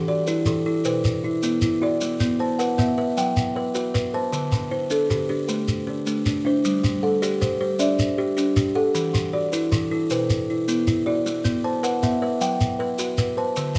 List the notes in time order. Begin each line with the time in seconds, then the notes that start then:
Already playing: E3
0.08 F#4 D5
0.27 E4 B4, shekere
0.45 E3 A4, shekere
0.66 E4 A4
0.85 B2 B4 C5, shekere
1.05 shekere
1.24 E4
1.43 B3 E4, shekere
1.62 E4, shekere
1.82 E4 F#4 D5
2.01 B3, shekere
2.20 B3, shekere
2.40 C5 A5
2.59 B4 F#5, shekere
2.78 B3 E5, shekere
2.98 B4 E5
3.17 F#3 F#5 G5, shekere
3.37 shekere
3.56 B4
3.75 F#4 B4, shekere
3.94 B4, shekere
4.14 B4 C5 A5
4.33 D3, shekere
4.52 D3, shekere
4.71 E4 C5
4.90 D4 A4, shekere
5.10 D3 G4, shekere
5.29 D4 G4
5.48 A3 B4, shekere
5.68 shekere
5.87 D4
6.06 A3 D4, shekere
6.26 D4, shekere
6.45 D4 E4 C5
6.65 G3, shekere
6.84 G3, shekere
7.03 A4 F#5
7.22 G4 D5, shekere
7.41 G3 C5, shekere
7.61 G4 C5
7.79 D4 D5 E5, shekere
7.99 shekere
8.18 G4
8.37 D4 G4, shekere
8.56 G4, shekere
8.75 G4 A4 F#5
8.95 E3, shekere
9.13 E3, shekere
9.33 F#4 D5
9.52 E4 B4, shekere
9.71 E3 A4, shekere
9.91 E4 A4
10.10 B2 B4 C5, shekere
10.30 shekere
10.50 E4
10.68 B3 E4, shekere
10.87 E4, shekere
11.06 E4 F#4 D5
11.26 B3, shekere
11.44 B3, shekere
11.64 C5 A5
11.83 B4 F#5, shekere
12.03 B3 E5, shekere
12.22 B4 E5
12.41 F#3 F#5 G5, shekere
12.61 shekere
12.79 B4
12.99 F#4 B4, shekere
13.18 B4, shekere
13.37 B4 C5 A5
13.56 D3, shekere
13.75 D3, shekere